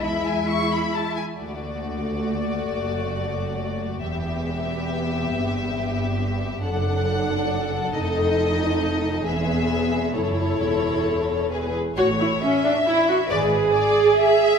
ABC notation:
X:1
M:3/4
L:1/8
Q:1/4=136
K:E
V:1 name="Violin section"
b g c' b a g | [K:D] d6- | d6 | e6- |
e6 | [K:A] f6 | _e6 | e4 c2- |
c4 B z | c z4 z | d z4 z |]
V:2 name="Violin section"
e4- e z | [K:D] F6- | F6 | G6- |
G6 | [K:A] A6- | A6 | G4 A2- |
A4 G z | c2 e4 | B2 d2 e2 |]
V:3 name="Viola section"
G,4- G, z | [K:D] A,6- | A,6 | B,6- |
B,6 | [K:A] D6 | _E6 | B,4 E2- |
E4- E z | F E C D E F | G6 |]
V:4 name="Cello section" clef=bass
E4- E z | [K:D] D,,6 | F,,6 | E,,6 |
G,,6 | [K:A] F,,6 | =F,,6 | E,,4 F,,2 |
E,,4- E,, z | A,,2 z4 | G,,2 z4 |]
V:5 name="Double bass section" clef=bass
E,,4- E,, z | [K:D] D,,6 | F,,,6 | E,,,6 |
G,,,6 | [K:A] F,,,6 | =F,,,6 | E,,,4 F,,,2 |
E,,,4- E,,, z | A,,,2 z4 | G,,,2 z4 |]